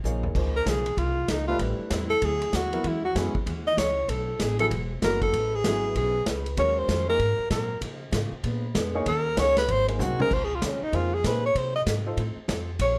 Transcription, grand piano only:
0.05 0.34 A#3 soft
0.05 0.35 D#4 soft
0.05 0.35 G#4 medium
0.05 0.36 C#5 medium
0.36 0.82 A#3 medium
0.36 0.83 D#4 soft
0.36 0.83 G#4 soft
0.36 0.83 C5 medium
1.48 1.58 A3 medium
1.48 1.59 D4 medium
1.48 1.59 G4 medium
1.48 1.59 B4 medium
1.60 2.07 A3 medium
1.60 2.07 D4 medium
1.60 2.07 G4 soft
1.60 2.07 B4 medium
2.73 2.83 F#3 medium
2.73 2.83 B3 medium
2.73 2.84 E4 medium
2.73 2.84 A#4 medium
3.16 3.33 F#3 medium
3.16 3.33 B3 medium
3.16 3.33 E4 medium
3.16 3.34 G#4 medium
4.59 4.70 F#3 medium
4.59 4.70 B3 medium
4.59 4.70 E4 medium
4.59 4.70 G#4 medium
5.02 5.33 F#3 medium
5.02 5.33 B3 soft
5.02 5.34 E4 soft
5.02 5.34 F#4 medium
5.64 6.11 F#3 medium
5.64 6.11 B3 soft
5.64 6.12 E4 medium
5.64 6.12 G#4 medium
6.58 7.04 G#3 medium
6.58 7.05 C#4 medium
6.58 7.05 F#4 medium
6.58 7.05 A#4 medium
7.08 7.19 A#3 medium
7.08 7.19 D#4 medium
7.08 7.19 G#4 medium
7.08 7.19 A#4 medium
8.94 9.05 A#3 medium
8.94 9.06 D#4 medium
8.94 9.06 G#4 medium
8.94 9.06 C#5 medium
9.37 9.55 A#3 medium
9.37 9.55 D#4 medium
9.37 9.56 G#4 medium
9.37 9.55 C#5 medium
9.88 10.17 A#3 medium
9.88 10.17 D#4 medium
9.88 10.18 G#4 medium
9.88 10.18 C5 medium
10.20 10.30 C#3 medium
10.20 10.30 A#3 medium
10.20 10.30 D#4 medium
10.20 10.31 G#4 medium
10.20 10.31 C5 medium
10.93 11.10 A#3 medium
10.93 11.11 D#4 medium
10.93 11.11 G#4 medium
10.93 11.11 C5 medium
11.25 11.42 A#3 medium
11.25 11.42 D#4 medium
11.25 11.42 G#4 soft
11.25 11.43 C5 medium
12.06 12.17 D#4 medium
12.06 12.17 F4 medium
12.06 12.17 A4 medium
12.06 12.17 C5 medium

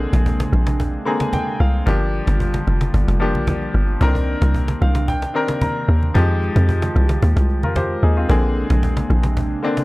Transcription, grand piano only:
0.00 0.58 D3 medium
0.00 0.58 A#3 medium
0.00 0.59 C4 medium
0.00 0.59 G#4 loud
1.05 1.71 D3 medium
1.05 1.71 A#3 medium
1.05 1.71 C4 medium
1.05 1.72 G#4 medium
1.05 1.19 A#5 medium
1.21 1.32 G#5 medium
1.33 1.58 G5 medium
1.60 1.85 F5 medium
1.86 2.72 F3 medium
1.86 2.73 A#3 medium
1.86 2.73 D4 medium
1.86 2.73 G4 loud
3.20 3.85 F3 medium
3.20 3.85 A#3 medium
3.20 3.86 D4 medium
3.20 3.86 G4 medium
4.00 4.07 D3 medium
4.00 4.87 C4 medium
4.00 4.87 D4 medium
4.00 4.88 A#4 loud
4.07 4.90 D#3 medium
4.82 5.06 F5 medium
5.08 5.58 G5 medium
5.34 5.99 D#3 medium
5.34 6.00 C4 medium
5.34 6.00 D4 medium
5.34 6.00 A#4 medium
5.62 6.12 A#5 medium
6.14 7.01 F3 medium
6.14 7.01 G#3 medium
6.14 7.01 D#4 medium
6.14 7.02 G4 loud
7.64 7.76 F4 medium
7.64 7.76 A#4 medium
7.76 8.02 G4 medium
7.76 8.02 C5 medium
8.03 8.16 D#4 medium
8.03 8.16 G#4 medium
8.17 8.29 C4 medium
8.17 8.42 F4 medium
8.29 9.15 D3 medium
8.29 9.15 A#3 medium
8.29 9.16 C4 medium
8.29 9.16 G#4 loud
9.62 9.84 D3 medium
9.62 9.84 A#3 medium
9.62 9.84 C4 medium
9.62 9.84 D4 medium

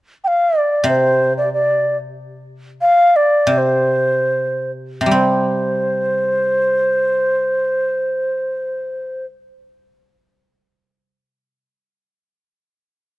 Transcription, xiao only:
0.24 0.59 F5 medium
0.24 0.28 G5 medium
0.58 0.88 D5 medium
0.89 1.33 C5 medium
1.37 1.52 D5 medium
1.53 1.97 D5 medium
2.81 3.17 F5 medium
3.16 3.54 D5 medium
3.54 4.71 C5 medium
3.54 3.59 D5 medium
5.13 9.25 C5 medium

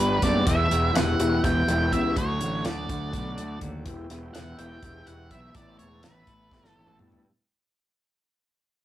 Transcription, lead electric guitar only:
0.00 0.25 B4 loud
0.23 0.47 D5 medium
0.47 0.92 E5 loud
0.96 1.41 F#5 loud
1.44 1.94 G5 loud
1.93 2.17 E5 medium
2.17 2.66 C#5 medium
2.66 3.58 D5 medium
4.34 4.58 F#5 loud
4.59 5.07 G5 loud
5.07 5.30 F#5 loud
5.31 5.55 E5 loud
5.56 5.78 D5 loud
5.79 6.04 C#5 medium
6.03 6.68 B4 medium
6.68 6.96 A4 medium

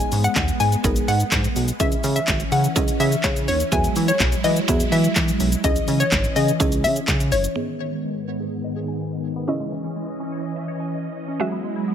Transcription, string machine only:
0.00 1.78 G#3 medium
0.00 1.78 B3 medium
1.80 3.70 E3 medium
1.80 3.70 C#4 medium
3.72 5.62 F#3 medium
3.72 5.62 G#3 medium
3.72 5.62 E4 medium
5.64 7.54 E3 medium
5.64 7.54 C#4 medium
5.64 7.54 D#5 loud
7.56 9.46 G#2 medium
7.56 9.46 D#3 medium
7.56 9.46 B3 medium
9.48 11.38 E3 medium
9.48 11.38 C#4 medium
9.48 11.38 D#5 medium
11.40 11.95 F#3 medium
11.40 11.95 G#3 medium
11.40 11.95 E4 medium

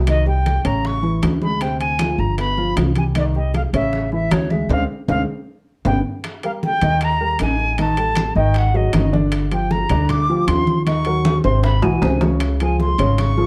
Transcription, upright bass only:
0.00 0.59 C2 medium
0.65 1.19 A1 medium
1.23 2.13 D2 medium
2.18 2.73 G1 medium
2.76 3.67 C2 medium
3.73 4.28 A1 medium
4.32 4.68 D2 medium
4.69 4.84 D2 loud
5.08 5.23 D2 medium
5.85 6.00 G1 medium
6.82 7.36 D#2 medium
7.40 8.30 A1 medium
8.35 8.90 G#1 medium
8.93 9.84 G1 medium
9.90 10.44 D2 medium
10.48 11.38 D#2 medium
11.44 11.80 G#1 medium
11.82 12.01 B1 medium
12.02 12.93 C#2 medium
12.99 13.46 G#1 medium

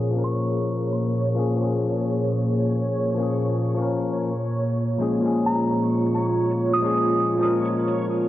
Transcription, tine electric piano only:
0.00 0.11 A#3 medium
0.00 0.12 C#4 medium
0.00 0.13 G#4 medium
0.10 1.33 F3 medium
0.10 1.34 A#3 medium
0.15 1.35 C#4 medium
0.15 1.37 A#4 medium
1.35 1.54 F3 medium
1.35 1.57 A#3 medium
1.35 1.58 C#4 medium
1.39 1.59 G#4 loud
1.56 3.13 F3 medium
1.56 3.16 A#3 medium
1.61 3.17 C#4 medium
1.61 3.19 G#4 medium
3.15 3.73 F3 medium
3.15 3.74 A#3 medium
3.20 3.75 C#4 medium
3.20 3.77 G#4 medium
3.74 4.29 F3 medium
3.74 4.31 A#3 medium
3.79 4.32 C#4 medium
3.79 4.33 A#4 medium
4.98 5.19 A#2 medium
4.98 5.21 F3 medium
4.98 5.21 G#3 medium
4.98 5.22 C#4 medium
4.98 5.22 G#4 medium
5.20 6.77 A#2 medium
5.20 6.79 F3 medium
5.20 6.81 G#3 medium
5.26 6.82 C#4 medium
5.26 6.83 G#4 medium
6.78 7.36 A#2 medium
6.78 7.38 F3 medium
6.78 7.38 G#3 medium
6.84 7.39 C#4 medium
6.84 7.40 G#4 medium
7.37 8.29 A#2 medium
7.37 8.29 F3 medium
7.37 8.29 G#3 medium
7.43 8.29 C#4 medium
7.43 8.29 A#4 medium

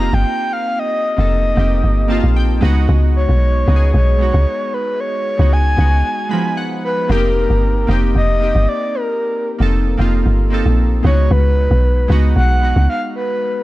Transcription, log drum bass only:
0.00 0.11 F1 loud
0.13 0.25 G1 loud
1.18 1.55 F1 loud
1.57 1.82 F1 loud
1.84 2.21 G1 medium
2.24 2.60 A#1 medium
2.63 2.87 C#2 loud
2.89 3.27 C#2 loud
3.29 3.66 B1 medium
3.68 3.93 C#2 loud
3.94 4.32 B1 loud
4.34 4.46 C#2 loud
5.39 5.76 C#2 loud
5.78 6.03 C#2 loud
7.10 7.48 F1 loud
7.50 7.87 G1 medium
7.89 8.14 F1 loud
8.15 8.53 F1 loud
8.55 8.67 G1 medium
9.60 9.97 F1 loud
9.99 10.24 F1 loud
10.26 10.63 G1 medium
10.66 11.02 A#1 medium
11.05 11.29 C#2 loud
11.31 11.69 C#2 loud
11.71 12.08 B1 loud
12.10 12.35 C#2 loud
12.36 12.74 B1 medium
12.76 12.88 C#2 medium

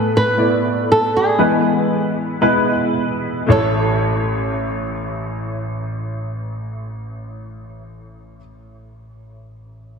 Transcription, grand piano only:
0.00 0.84 A2 medium
0.00 0.33 A3 medium
0.00 0.33 B3 medium
0.00 0.33 E4 medium
0.00 0.33 B4 medium
0.37 1.33 A3 medium
0.37 1.34 B3 medium
0.37 1.34 E4 medium
0.37 1.34 D5 medium
1.38 2.92 E3 medium
1.38 2.37 G#3 medium
1.38 2.37 B3 medium
1.38 2.37 E4 medium
1.38 2.38 B4 medium
2.41 3.43 G#3 medium
2.41 3.43 B3 medium
2.41 3.43 E4 medium
2.41 3.43 B4 medium
3.46 8.37 A1 medium
3.46 8.35 A3 medium
3.46 8.37 E4 medium
3.46 8.39 C#5 medium

